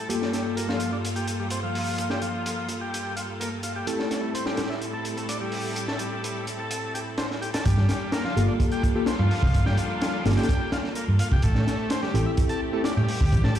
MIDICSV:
0, 0, Header, 1, 6, 480
1, 0, Start_track
1, 0, Tempo, 472441
1, 97, Time_signature, 4, 2, 24, 8
1, 13810, End_track
2, 0, Start_track
2, 0, Title_t, "Tine electric piano"
2, 0, Program_c, 0, 4
2, 97, Note_on_c, 0, 58, 72
2, 98, Note_on_c, 0, 65, 65
2, 98, Note_on_c, 0, 67, 63
2, 98, Note_on_c, 0, 69, 78
2, 3908, Note_off_c, 0, 58, 0
2, 3908, Note_off_c, 0, 65, 0
2, 3909, Note_off_c, 0, 67, 0
2, 3909, Note_off_c, 0, 69, 0
2, 3933, Note_on_c, 0, 60, 73
2, 3933, Note_on_c, 0, 69, 83
2, 3934, Note_on_c, 0, 64, 68
2, 3935, Note_on_c, 0, 67, 66
2, 7746, Note_off_c, 0, 60, 0
2, 7746, Note_off_c, 0, 69, 0
2, 7747, Note_off_c, 0, 64, 0
2, 7747, Note_off_c, 0, 67, 0
2, 8494, Note_on_c, 0, 58, 82
2, 8494, Note_on_c, 0, 65, 75
2, 8494, Note_on_c, 0, 69, 89
2, 8495, Note_on_c, 0, 67, 78
2, 9067, Note_off_c, 0, 69, 0
2, 9068, Note_off_c, 0, 58, 0
2, 9068, Note_off_c, 0, 65, 0
2, 9068, Note_off_c, 0, 67, 0
2, 9098, Note_on_c, 0, 58, 87
2, 9098, Note_on_c, 0, 65, 82
2, 9098, Note_on_c, 0, 69, 93
2, 9099, Note_on_c, 0, 67, 80
2, 9223, Note_off_c, 0, 58, 0
2, 9223, Note_off_c, 0, 65, 0
2, 9223, Note_off_c, 0, 67, 0
2, 9223, Note_off_c, 0, 69, 0
2, 10418, Note_on_c, 0, 58, 83
2, 10418, Note_on_c, 0, 65, 74
2, 10418, Note_on_c, 0, 67, 76
2, 10418, Note_on_c, 0, 69, 93
2, 10620, Note_off_c, 0, 58, 0
2, 10621, Note_off_c, 0, 65, 0
2, 10621, Note_off_c, 0, 67, 0
2, 10621, Note_off_c, 0, 69, 0
2, 12336, Note_on_c, 0, 60, 84
2, 12336, Note_on_c, 0, 69, 96
2, 12337, Note_on_c, 0, 64, 77
2, 12337, Note_on_c, 0, 67, 78
2, 12909, Note_off_c, 0, 60, 0
2, 12909, Note_off_c, 0, 64, 0
2, 12909, Note_off_c, 0, 67, 0
2, 12909, Note_off_c, 0, 69, 0
2, 12937, Note_on_c, 0, 60, 90
2, 12937, Note_on_c, 0, 64, 82
2, 12937, Note_on_c, 0, 67, 82
2, 12937, Note_on_c, 0, 69, 96
2, 13062, Note_off_c, 0, 64, 0
2, 13062, Note_off_c, 0, 67, 0
2, 13063, Note_off_c, 0, 60, 0
2, 13063, Note_off_c, 0, 69, 0
2, 13810, End_track
3, 0, Start_track
3, 0, Title_t, "String section"
3, 0, Program_c, 1, 48
3, 0, Note_on_c, 1, 69, 81
3, 94, Note_on_c, 1, 43, 73
3, 95, Note_on_c, 1, 65, 70
3, 97, Note_on_c, 1, 55, 67
3, 98, Note_on_c, 1, 58, 69
3, 3897, Note_off_c, 1, 43, 0
3, 3897, Note_off_c, 1, 65, 0
3, 3897, Note_off_c, 1, 69, 0
3, 3899, Note_off_c, 1, 58, 0
3, 3933, Note_on_c, 1, 45, 76
3, 3933, Note_on_c, 1, 69, 82
3, 3934, Note_on_c, 1, 64, 68
3, 3935, Note_on_c, 1, 60, 66
3, 7736, Note_off_c, 1, 45, 0
3, 7736, Note_off_c, 1, 55, 0
3, 7736, Note_off_c, 1, 69, 0
3, 7737, Note_off_c, 1, 60, 0
3, 7737, Note_off_c, 1, 64, 0
3, 7771, Note_on_c, 1, 55, 84
3, 7771, Note_on_c, 1, 65, 76
3, 7772, Note_on_c, 1, 58, 87
3, 7772, Note_on_c, 1, 62, 74
3, 7772, Note_on_c, 1, 69, 74
3, 11575, Note_off_c, 1, 55, 0
3, 11575, Note_off_c, 1, 62, 0
3, 11575, Note_off_c, 1, 65, 0
3, 11575, Note_off_c, 1, 69, 0
3, 11576, Note_off_c, 1, 58, 0
3, 11608, Note_on_c, 1, 57, 83
3, 11609, Note_on_c, 1, 60, 73
3, 11610, Note_on_c, 1, 67, 88
3, 13810, Note_off_c, 1, 57, 0
3, 13810, Note_off_c, 1, 60, 0
3, 13810, Note_off_c, 1, 67, 0
3, 13810, End_track
4, 0, Start_track
4, 0, Title_t, "Transistor combo organ"
4, 0, Program_c, 2, 18
4, 94, Note_on_c, 2, 55, 75
4, 563, Note_off_c, 2, 55, 0
4, 575, Note_on_c, 2, 58, 78
4, 685, Note_off_c, 2, 58, 0
4, 698, Note_on_c, 2, 53, 94
4, 926, Note_off_c, 2, 53, 0
4, 939, Note_on_c, 2, 62, 70
4, 990, Note_off_c, 2, 62, 0
4, 1176, Note_on_c, 2, 67, 95
4, 1289, Note_off_c, 2, 67, 0
4, 1419, Note_on_c, 2, 55, 70
4, 1505, Note_off_c, 2, 55, 0
4, 1536, Note_on_c, 2, 60, 76
4, 1625, Note_off_c, 2, 60, 0
4, 1656, Note_on_c, 2, 53, 92
4, 2125, Note_off_c, 2, 53, 0
4, 2136, Note_on_c, 2, 67, 91
4, 2249, Note_off_c, 2, 67, 0
4, 2257, Note_on_c, 2, 53, 72
4, 2725, Note_off_c, 2, 53, 0
4, 2857, Note_on_c, 2, 67, 72
4, 3204, Note_off_c, 2, 67, 0
4, 3216, Note_on_c, 2, 65, 71
4, 3269, Note_off_c, 2, 65, 0
4, 3456, Note_on_c, 2, 58, 75
4, 3545, Note_off_c, 2, 58, 0
4, 3693, Note_on_c, 2, 65, 70
4, 3784, Note_off_c, 2, 65, 0
4, 3818, Note_on_c, 2, 67, 69
4, 3924, Note_off_c, 2, 67, 0
4, 3935, Note_on_c, 2, 57, 78
4, 4404, Note_off_c, 2, 57, 0
4, 4414, Note_on_c, 2, 60, 78
4, 4525, Note_off_c, 2, 60, 0
4, 4534, Note_on_c, 2, 55, 96
4, 4764, Note_off_c, 2, 55, 0
4, 4773, Note_on_c, 2, 64, 72
4, 4827, Note_off_c, 2, 64, 0
4, 5015, Note_on_c, 2, 69, 95
4, 5128, Note_off_c, 2, 69, 0
4, 5254, Note_on_c, 2, 57, 69
4, 5343, Note_off_c, 2, 57, 0
4, 5373, Note_on_c, 2, 62, 76
4, 5464, Note_off_c, 2, 62, 0
4, 5496, Note_on_c, 2, 55, 91
4, 5965, Note_off_c, 2, 55, 0
4, 5976, Note_on_c, 2, 69, 94
4, 6089, Note_off_c, 2, 69, 0
4, 6097, Note_on_c, 2, 55, 72
4, 6565, Note_off_c, 2, 55, 0
4, 6698, Note_on_c, 2, 69, 73
4, 7044, Note_off_c, 2, 69, 0
4, 7056, Note_on_c, 2, 67, 72
4, 7110, Note_off_c, 2, 67, 0
4, 7294, Note_on_c, 2, 60, 81
4, 7384, Note_off_c, 2, 60, 0
4, 7534, Note_on_c, 2, 67, 73
4, 7624, Note_off_c, 2, 67, 0
4, 7657, Note_on_c, 2, 69, 73
4, 7764, Note_off_c, 2, 69, 0
4, 7777, Note_on_c, 2, 55, 83
4, 8245, Note_off_c, 2, 55, 0
4, 8255, Note_on_c, 2, 58, 84
4, 8365, Note_off_c, 2, 58, 0
4, 8377, Note_on_c, 2, 53, 104
4, 8605, Note_off_c, 2, 53, 0
4, 8618, Note_on_c, 2, 62, 78
4, 8670, Note_off_c, 2, 62, 0
4, 8860, Note_on_c, 2, 67, 104
4, 8971, Note_off_c, 2, 67, 0
4, 9100, Note_on_c, 2, 55, 74
4, 9186, Note_off_c, 2, 55, 0
4, 9219, Note_on_c, 2, 60, 85
4, 9307, Note_off_c, 2, 60, 0
4, 9337, Note_on_c, 2, 53, 102
4, 9805, Note_off_c, 2, 53, 0
4, 9817, Note_on_c, 2, 67, 105
4, 9930, Note_off_c, 2, 67, 0
4, 9938, Note_on_c, 2, 53, 77
4, 10405, Note_off_c, 2, 53, 0
4, 10539, Note_on_c, 2, 67, 77
4, 10885, Note_off_c, 2, 67, 0
4, 10895, Note_on_c, 2, 65, 76
4, 10949, Note_off_c, 2, 65, 0
4, 11133, Note_on_c, 2, 58, 84
4, 11223, Note_off_c, 2, 58, 0
4, 11378, Note_on_c, 2, 65, 74
4, 11466, Note_off_c, 2, 65, 0
4, 11502, Note_on_c, 2, 67, 75
4, 11606, Note_off_c, 2, 67, 0
4, 11618, Note_on_c, 2, 57, 82
4, 12085, Note_off_c, 2, 57, 0
4, 12095, Note_on_c, 2, 60, 85
4, 12205, Note_off_c, 2, 60, 0
4, 12218, Note_on_c, 2, 55, 100
4, 12446, Note_off_c, 2, 55, 0
4, 12457, Note_on_c, 2, 64, 78
4, 12509, Note_off_c, 2, 64, 0
4, 12695, Note_on_c, 2, 69, 108
4, 12809, Note_off_c, 2, 69, 0
4, 12937, Note_on_c, 2, 57, 76
4, 13024, Note_off_c, 2, 57, 0
4, 13053, Note_on_c, 2, 62, 86
4, 13144, Note_off_c, 2, 62, 0
4, 13177, Note_on_c, 2, 55, 100
4, 13645, Note_off_c, 2, 55, 0
4, 13658, Note_on_c, 2, 69, 102
4, 13770, Note_off_c, 2, 69, 0
4, 13772, Note_on_c, 2, 55, 76
4, 13810, Note_off_c, 2, 55, 0
4, 13810, End_track
5, 0, Start_track
5, 0, Title_t, "Fingered electric bass"
5, 0, Program_c, 3, 33
5, 7780, Note_on_c, 3, 31, 99
5, 7869, Note_off_c, 3, 31, 0
5, 7900, Note_on_c, 3, 43, 88
5, 7987, Note_off_c, 3, 43, 0
5, 8499, Note_on_c, 3, 31, 102
5, 8588, Note_off_c, 3, 31, 0
5, 9340, Note_on_c, 3, 43, 94
5, 9427, Note_off_c, 3, 43, 0
5, 9577, Note_on_c, 3, 36, 97
5, 9665, Note_off_c, 3, 36, 0
5, 9702, Note_on_c, 3, 31, 102
5, 9789, Note_off_c, 3, 31, 0
5, 9820, Note_on_c, 3, 43, 90
5, 9907, Note_off_c, 3, 43, 0
5, 10418, Note_on_c, 3, 31, 104
5, 10507, Note_off_c, 3, 31, 0
5, 11260, Note_on_c, 3, 43, 93
5, 11347, Note_off_c, 3, 43, 0
5, 11498, Note_on_c, 3, 36, 100
5, 11586, Note_off_c, 3, 36, 0
5, 11621, Note_on_c, 3, 33, 103
5, 11709, Note_off_c, 3, 33, 0
5, 11738, Note_on_c, 3, 45, 91
5, 11826, Note_off_c, 3, 45, 0
5, 12334, Note_on_c, 3, 33, 104
5, 12426, Note_off_c, 3, 33, 0
5, 13177, Note_on_c, 3, 45, 93
5, 13266, Note_off_c, 3, 45, 0
5, 13421, Note_on_c, 3, 38, 94
5, 13507, Note_off_c, 3, 38, 0
5, 13540, Note_on_c, 3, 33, 100
5, 13629, Note_off_c, 3, 33, 0
5, 13655, Note_on_c, 3, 45, 93
5, 13744, Note_off_c, 3, 45, 0
5, 13810, End_track
6, 0, Start_track
6, 0, Title_t, "Drums"
6, 101, Note_on_c, 9, 42, 83
6, 202, Note_off_c, 9, 42, 0
6, 224, Note_on_c, 9, 38, 39
6, 325, Note_off_c, 9, 38, 0
6, 335, Note_on_c, 9, 38, 47
6, 339, Note_on_c, 9, 42, 69
6, 437, Note_off_c, 9, 38, 0
6, 441, Note_off_c, 9, 42, 0
6, 581, Note_on_c, 9, 42, 82
6, 682, Note_off_c, 9, 42, 0
6, 704, Note_on_c, 9, 38, 54
6, 805, Note_off_c, 9, 38, 0
6, 812, Note_on_c, 9, 42, 65
6, 913, Note_off_c, 9, 42, 0
6, 1063, Note_on_c, 9, 42, 80
6, 1164, Note_off_c, 9, 42, 0
6, 1179, Note_on_c, 9, 42, 37
6, 1280, Note_off_c, 9, 42, 0
6, 1295, Note_on_c, 9, 42, 62
6, 1397, Note_off_c, 9, 42, 0
6, 1528, Note_on_c, 9, 42, 86
6, 1629, Note_off_c, 9, 42, 0
6, 1779, Note_on_c, 9, 46, 83
6, 1881, Note_off_c, 9, 46, 0
6, 2014, Note_on_c, 9, 42, 80
6, 2116, Note_off_c, 9, 42, 0
6, 2132, Note_on_c, 9, 38, 48
6, 2233, Note_off_c, 9, 38, 0
6, 2253, Note_on_c, 9, 42, 64
6, 2354, Note_off_c, 9, 42, 0
6, 2498, Note_on_c, 9, 42, 86
6, 2600, Note_off_c, 9, 42, 0
6, 2728, Note_on_c, 9, 42, 66
6, 2830, Note_off_c, 9, 42, 0
6, 2986, Note_on_c, 9, 42, 79
6, 3088, Note_off_c, 9, 42, 0
6, 3218, Note_on_c, 9, 42, 67
6, 3320, Note_off_c, 9, 42, 0
6, 3463, Note_on_c, 9, 42, 85
6, 3565, Note_off_c, 9, 42, 0
6, 3689, Note_on_c, 9, 42, 63
6, 3790, Note_off_c, 9, 42, 0
6, 3933, Note_on_c, 9, 42, 83
6, 4035, Note_off_c, 9, 42, 0
6, 4055, Note_on_c, 9, 38, 38
6, 4156, Note_off_c, 9, 38, 0
6, 4175, Note_on_c, 9, 38, 50
6, 4176, Note_on_c, 9, 42, 70
6, 4277, Note_off_c, 9, 38, 0
6, 4277, Note_off_c, 9, 42, 0
6, 4417, Note_on_c, 9, 42, 79
6, 4519, Note_off_c, 9, 42, 0
6, 4530, Note_on_c, 9, 38, 57
6, 4631, Note_off_c, 9, 38, 0
6, 4645, Note_on_c, 9, 42, 77
6, 4650, Note_on_c, 9, 38, 99
6, 4746, Note_off_c, 9, 42, 0
6, 4752, Note_off_c, 9, 38, 0
6, 4775, Note_on_c, 9, 38, 45
6, 4876, Note_off_c, 9, 38, 0
6, 4892, Note_on_c, 9, 42, 60
6, 4994, Note_off_c, 9, 42, 0
6, 5130, Note_on_c, 9, 42, 70
6, 5231, Note_off_c, 9, 42, 0
6, 5257, Note_on_c, 9, 42, 38
6, 5359, Note_off_c, 9, 42, 0
6, 5373, Note_on_c, 9, 42, 84
6, 5475, Note_off_c, 9, 42, 0
6, 5606, Note_on_c, 9, 46, 77
6, 5708, Note_off_c, 9, 46, 0
6, 5853, Note_on_c, 9, 42, 86
6, 5954, Note_off_c, 9, 42, 0
6, 5976, Note_on_c, 9, 38, 52
6, 6077, Note_off_c, 9, 38, 0
6, 6087, Note_on_c, 9, 42, 67
6, 6189, Note_off_c, 9, 42, 0
6, 6340, Note_on_c, 9, 42, 77
6, 6441, Note_off_c, 9, 42, 0
6, 6576, Note_on_c, 9, 42, 69
6, 6677, Note_off_c, 9, 42, 0
6, 6814, Note_on_c, 9, 42, 88
6, 6916, Note_off_c, 9, 42, 0
6, 7061, Note_on_c, 9, 42, 60
6, 7163, Note_off_c, 9, 42, 0
6, 7292, Note_on_c, 9, 42, 77
6, 7293, Note_on_c, 9, 38, 105
6, 7393, Note_off_c, 9, 42, 0
6, 7394, Note_off_c, 9, 38, 0
6, 7424, Note_on_c, 9, 38, 46
6, 7526, Note_off_c, 9, 38, 0
6, 7542, Note_on_c, 9, 42, 56
6, 7644, Note_off_c, 9, 42, 0
6, 7660, Note_on_c, 9, 42, 84
6, 7664, Note_on_c, 9, 38, 109
6, 7762, Note_off_c, 9, 42, 0
6, 7766, Note_off_c, 9, 38, 0
6, 7776, Note_on_c, 9, 42, 90
6, 7780, Note_on_c, 9, 36, 101
6, 7878, Note_off_c, 9, 42, 0
6, 7881, Note_off_c, 9, 36, 0
6, 7899, Note_on_c, 9, 38, 41
6, 8000, Note_off_c, 9, 38, 0
6, 8015, Note_on_c, 9, 42, 74
6, 8017, Note_on_c, 9, 38, 58
6, 8116, Note_off_c, 9, 42, 0
6, 8119, Note_off_c, 9, 38, 0
6, 8252, Note_on_c, 9, 38, 127
6, 8252, Note_on_c, 9, 42, 85
6, 8354, Note_off_c, 9, 38, 0
6, 8354, Note_off_c, 9, 42, 0
6, 8376, Note_on_c, 9, 38, 54
6, 8477, Note_off_c, 9, 38, 0
6, 8506, Note_on_c, 9, 42, 65
6, 8608, Note_off_c, 9, 42, 0
6, 8736, Note_on_c, 9, 36, 100
6, 8738, Note_on_c, 9, 42, 82
6, 8837, Note_off_c, 9, 36, 0
6, 8840, Note_off_c, 9, 42, 0
6, 8855, Note_on_c, 9, 42, 45
6, 8956, Note_off_c, 9, 42, 0
6, 8975, Note_on_c, 9, 36, 95
6, 8978, Note_on_c, 9, 42, 64
6, 9077, Note_off_c, 9, 36, 0
6, 9080, Note_off_c, 9, 42, 0
6, 9208, Note_on_c, 9, 38, 109
6, 9213, Note_on_c, 9, 42, 88
6, 9310, Note_off_c, 9, 38, 0
6, 9315, Note_off_c, 9, 42, 0
6, 9458, Note_on_c, 9, 46, 77
6, 9560, Note_off_c, 9, 46, 0
6, 9577, Note_on_c, 9, 36, 89
6, 9679, Note_off_c, 9, 36, 0
6, 9696, Note_on_c, 9, 42, 94
6, 9700, Note_on_c, 9, 36, 104
6, 9798, Note_off_c, 9, 42, 0
6, 9802, Note_off_c, 9, 36, 0
6, 9815, Note_on_c, 9, 38, 53
6, 9916, Note_off_c, 9, 38, 0
6, 9930, Note_on_c, 9, 42, 70
6, 10032, Note_off_c, 9, 42, 0
6, 10175, Note_on_c, 9, 42, 86
6, 10181, Note_on_c, 9, 38, 118
6, 10276, Note_off_c, 9, 42, 0
6, 10282, Note_off_c, 9, 38, 0
6, 10419, Note_on_c, 9, 42, 67
6, 10420, Note_on_c, 9, 38, 89
6, 10472, Note_off_c, 9, 42, 0
6, 10472, Note_on_c, 9, 42, 70
6, 10483, Note_off_c, 9, 38, 0
6, 10483, Note_on_c, 9, 38, 86
6, 10542, Note_off_c, 9, 42, 0
6, 10542, Note_on_c, 9, 42, 66
6, 10545, Note_off_c, 9, 38, 0
6, 10545, Note_on_c, 9, 38, 97
6, 10600, Note_off_c, 9, 42, 0
6, 10600, Note_on_c, 9, 42, 70
6, 10603, Note_off_c, 9, 38, 0
6, 10603, Note_on_c, 9, 38, 85
6, 10657, Note_on_c, 9, 36, 113
6, 10659, Note_off_c, 9, 42, 0
6, 10659, Note_on_c, 9, 42, 90
6, 10705, Note_off_c, 9, 38, 0
6, 10758, Note_off_c, 9, 36, 0
6, 10761, Note_off_c, 9, 42, 0
6, 10892, Note_on_c, 9, 38, 102
6, 10893, Note_on_c, 9, 42, 72
6, 10994, Note_off_c, 9, 38, 0
6, 10994, Note_off_c, 9, 42, 0
6, 11013, Note_on_c, 9, 38, 45
6, 11115, Note_off_c, 9, 38, 0
6, 11128, Note_on_c, 9, 42, 67
6, 11230, Note_off_c, 9, 42, 0
6, 11370, Note_on_c, 9, 42, 76
6, 11472, Note_off_c, 9, 42, 0
6, 11497, Note_on_c, 9, 36, 97
6, 11599, Note_off_c, 9, 36, 0
6, 11606, Note_on_c, 9, 42, 91
6, 11619, Note_on_c, 9, 36, 102
6, 11708, Note_off_c, 9, 42, 0
6, 11721, Note_off_c, 9, 36, 0
6, 11737, Note_on_c, 9, 38, 44
6, 11838, Note_off_c, 9, 38, 0
6, 11859, Note_on_c, 9, 38, 53
6, 11863, Note_on_c, 9, 42, 65
6, 11960, Note_off_c, 9, 38, 0
6, 11965, Note_off_c, 9, 42, 0
6, 12091, Note_on_c, 9, 42, 94
6, 12097, Note_on_c, 9, 38, 127
6, 12192, Note_off_c, 9, 42, 0
6, 12198, Note_off_c, 9, 38, 0
6, 12221, Note_on_c, 9, 38, 57
6, 12323, Note_off_c, 9, 38, 0
6, 12342, Note_on_c, 9, 42, 73
6, 12444, Note_off_c, 9, 42, 0
6, 12571, Note_on_c, 9, 42, 86
6, 12576, Note_on_c, 9, 36, 107
6, 12673, Note_off_c, 9, 42, 0
6, 12678, Note_off_c, 9, 36, 0
6, 12692, Note_on_c, 9, 42, 46
6, 12794, Note_off_c, 9, 42, 0
6, 13047, Note_on_c, 9, 38, 120
6, 13057, Note_on_c, 9, 42, 83
6, 13149, Note_off_c, 9, 38, 0
6, 13159, Note_off_c, 9, 42, 0
6, 13293, Note_on_c, 9, 46, 84
6, 13395, Note_off_c, 9, 46, 0
6, 13419, Note_on_c, 9, 36, 93
6, 13520, Note_off_c, 9, 36, 0
6, 13538, Note_on_c, 9, 42, 81
6, 13539, Note_on_c, 9, 36, 106
6, 13639, Note_off_c, 9, 42, 0
6, 13640, Note_off_c, 9, 36, 0
6, 13652, Note_on_c, 9, 38, 57
6, 13754, Note_off_c, 9, 38, 0
6, 13769, Note_on_c, 9, 42, 66
6, 13810, Note_off_c, 9, 42, 0
6, 13810, End_track
0, 0, End_of_file